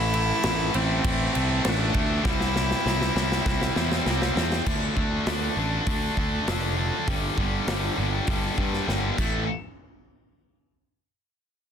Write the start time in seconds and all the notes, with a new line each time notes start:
Already playing: A1 A2 E3 A3 E4
0.13 A2 E3 A3, crash
0.43 A1 A2 E3 A3, snare, crash
0.73 A1 A2 E3 A3 C4, crash
1.03 A1 A2 E3 A3, kick, crash
1.33 C2 A2 E3 A3, crash
1.64 A1 A2 E3 A3 D4, snare, crash
1.93 D2 A2 E3 A3, kick, crash
2.24 C2 C3 G3 C4 E4, kick, snare
2.40 snare
2.55 C3 G3 C4, snare
2.71 snare
2.85 C2 C3 G3 C4, snare
3.01 snare
3.15 C2 C3 G3 C4, snare
3.32 snare
3.46 C2 C3 G3 C4, kick, snare
3.61 snare
3.76 E2 C3 G3 C4, snare
3.92 snare
4.06 C2 C3 G3 C4, snare
4.22 snare
4.36 E2 C3 G3 C4, snare
4.52 snare
4.66 D2 D3 A3 D4, kick, crash
4.96 D2 D3 A3 D4, kick
5.27 D2 D3 A3 D4, snare, open hi-hat
5.57 A1 D3 A3 D4
5.87 D2 D3 A3 D4, kick, open hi-hat
6.17 D2 D3 A3 D4, kick
6.47 F1 D3 A3 D4, snare, open hi-hat
6.78 D3 A3 D4
7.07 G1 G2 D3 G3, kick, open hi-hat
7.37 G1 G2 D3 G3, kick
7.67 G1 G2 D3 G3, snare, open hi-hat
7.98 G1 G2 D3 G3
8.27 G1 G2 D3 G3, kick, open hi-hat
8.58 G2 D3 G3, kick
8.73 snare
8.88 G1 G2 D3 G3, snare
9.18 A1 A2 E3 A3, kick, crash